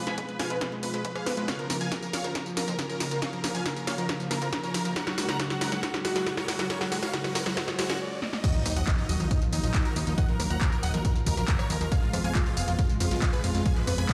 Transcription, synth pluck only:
0.07 0.13 G#3 medium
0.18 0.24 F3 medium
0.28 0.34 G#3 medium
0.39 0.45 B3 medium
0.50 0.56 G#3 loud
0.61 0.65 F3 medium
0.72 0.81 G#3 loud
0.83 0.89 B3 medium
0.94 0.97 G#3 loud
1.05 1.11 F3 medium
1.15 1.21 G#3 medium
1.26 1.32 B3 medium
1.37 1.43 G#3 loud
1.48 1.54 C#3 loud
1.59 1.68 F3 loud
1.70 1.76 A#3 medium
1.81 1.87 F3 medium
1.92 1.98 C#3 medium
2.03 2.08 F3 medium
2.13 2.19 A#3 medium
2.24 2.30 F3 loud
2.35 2.39 C#3 medium
2.46 2.55 F3 loud
2.57 2.63 A#3 medium
2.68 2.71 F3 loud
2.79 2.85 C#3 medium
2.89 2.95 F3 medium
3.00 3.04 F3 loud
3.11 3.17 F3 loud
3.22 3.28 C#3 loud
3.33 3.42 F3 loud
3.44 3.50 A#3 medium
3.55 3.61 F3 medium
3.66 3.71 C#3 medium
3.76 3.82 F3 medium
3.87 3.93 A#3 medium
3.98 4.04 F3 loud
4.20 4.29 F3 loud
4.31 4.37 A#3 medium
4.42 4.45 F3 loud
4.52 4.58 C#3 medium
4.63 4.69 F3 medium
4.74 4.78 F3 loud
4.85 4.91 F3 medium
4.96 5.02 C#3 loud
5.07 5.16 F#3 loud
5.18 5.24 G#3 medium
5.29 5.34 F#3 medium
5.39 5.45 C#3 medium
5.50 5.56 F#3 medium
5.61 5.67 G#3 medium
5.72 5.78 F#3 loud
5.83 5.87 C#3 medium
5.94 6.03 F#3 loud
6.05 6.11 G#3 medium
6.16 6.19 F#3 loud
6.26 6.32 C#3 medium
6.37 6.43 F#3 medium
6.48 6.52 F#3 medium
6.59 6.65 F#3 loud
6.70 6.76 C#3 loud
6.81 6.90 F#3 loud
6.92 6.98 G#3 medium
7.03 7.08 F#3 medium
7.13 7.19 C#3 medium
7.24 7.30 F#3 medium
7.35 7.41 G#3 medium
7.46 7.52 F#3 loud
7.57 7.60 C#3 medium
7.68 7.77 F#3 loud
7.79 7.84 G#3 loud
7.90 7.95 C#4 loud
8.44 8.50 D#3 loud
8.55 8.64 F3 loud
8.66 8.71 F#3 medium
8.76 8.82 F3 medium
8.87 8.93 D#3 medium
8.98 9.04 F3 medium
9.09 9.15 F#3 medium
9.20 9.26 F3 loud
9.31 9.34 D#3 medium
9.42 9.51 F3 loud
9.53 9.58 F#3 medium
9.63 9.67 F3 loud
9.74 9.80 D#3 medium
9.85 9.91 F3 medium
9.96 10.00 F3 loud
10.07 10.13 F3 loud
10.18 10.24 D#3 loud
10.29 10.37 F3 loud
10.39 10.45 F#3 medium
10.50 10.56 F3 medium
10.61 10.67 D#3 medium
10.72 10.78 F3 medium
10.83 10.89 F#3 medium
10.94 11.00 F3 loud
11.05 11.08 D#3 medium
11.16 11.24 F3 loud
11.26 11.32 F#3 medium
11.37 11.41 F3 loud
11.48 11.54 D#3 medium
11.59 11.65 F3 medium
11.70 11.73 F3 loud
11.81 11.87 F3 loud
11.92 11.98 F3 loud
12.03 12.11 G#3 loud
12.13 12.19 B3 medium
12.24 12.30 G#3 medium
12.35 12.41 F3 medium
12.46 12.52 G#3 medium
12.57 12.63 B3 medium
12.68 12.74 G#3 loud
12.79 12.82 F3 medium
12.89 12.98 G#3 loud
13.00 13.06 B3 medium
13.11 13.15 G#3 loud
13.22 13.28 F3 medium
13.33 13.39 G#3 medium
13.44 13.47 G#3 loud
13.55 13.61 G#3 loud
13.66 13.71 F3 loud
13.76 13.85 G#3 loud
13.87 13.93 B3 medium
13.98 14.04 G#3 medium
14.09 14.13 F3 medium

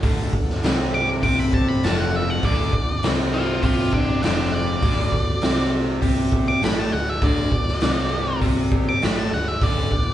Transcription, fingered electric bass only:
0.04 0.32 D1 medium
0.33 0.61 D1 medium
0.63 1.19 C2 medium
1.23 1.79 C2 medium
1.83 2.39 F1 loud
2.43 2.71 D1 medium
2.73 3.01 D1 medium
3.03 3.59 C2 medium
3.63 4.19 C2 medium
4.23 4.79 F1 medium
4.83 5.11 D1 medium
5.12 5.40 D1 medium
5.42 5.98 C2 medium
6.02 6.58 C2 medium
6.62 6.90 A1 medium
6.92 7.20 D1 medium
7.23 7.50 D1 medium
7.52 7.80 D1 medium
7.82 8.38 C2 medium
8.42 8.97 C2 medium
9.01 9.29 A1 medium
9.32 9.59 D1 medium
9.62 9.89 D1 medium
9.91 10.14 D1 medium

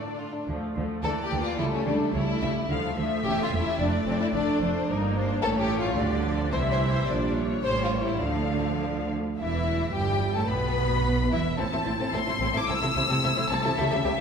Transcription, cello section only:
0.00 0.36 A2 soft
0.48 0.56 D3 soft
0.75 0.83 D3 soft
1.03 1.11 D3 soft
1.31 1.39 D3 soft
1.58 1.66 C#3 soft
1.86 1.94 C#3 medium
2.14 2.22 C#3 medium
2.41 2.49 C#3 soft
2.69 2.77 D3 medium
2.96 3.04 D3 soft
3.24 3.32 E2 medium
3.51 3.59 E2 medium
3.78 3.86 F2 medium
4.06 4.14 F2 soft
4.33 4.41 F2 medium
4.60 4.68 F2 soft
4.88 5.38 G2 medium
5.43 5.96 A2 medium
5.97 6.52 D3 medium
6.52 7.07 C3 medium
7.08 7.60 A#2 soft
7.64 8.20 A2 soft
8.22 9.15 D3 soft
9.37 9.90 E2 medium
9.94 10.35 G2 medium
10.36 10.49 A2 soft
10.49 11.31 B2 medium
11.31 11.58 E2 medium
11.58 11.64 A2 soft
11.72 11.78 A2 soft
11.86 11.92 A2 soft
11.99 12.05 A2 medium
12.13 12.19 A2 soft
12.28 12.33 A2 soft
12.41 12.46 A2 medium
12.54 12.60 A2 soft
12.68 12.73 C3 medium
12.82 12.87 C3 soft
12.95 13.01 C3 soft
13.10 13.15 C3 medium
13.23 13.29 C3 soft
13.37 13.42 C3 soft
13.51 13.56 C3 medium
13.65 13.70 C3 soft
13.78 13.83 C#3 medium
13.92 13.97 C#3 medium
14.05 14.11 C#3 medium

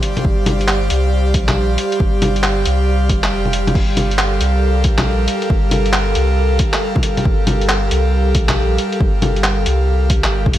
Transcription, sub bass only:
0.25 0.89 G1 loud
0.91 1.36 C2 medium
1.34 1.77 A#1 medium
2.00 2.65 G1 loud
2.66 3.11 C2 medium
3.09 3.74 F1 medium
3.75 4.40 G1 loud
4.41 4.86 C2 medium
4.85 5.27 A#1 medium
5.50 6.15 G1 loud
6.16 6.59 C2 medium
7.25 7.90 G1 loud
7.91 8.36 C2 medium
8.35 8.78 A#1 medium
9.01 9.65 G1 loud
9.66 10.26 C2 medium
10.24 10.53 G1 medium
10.54 10.58 G2 loud

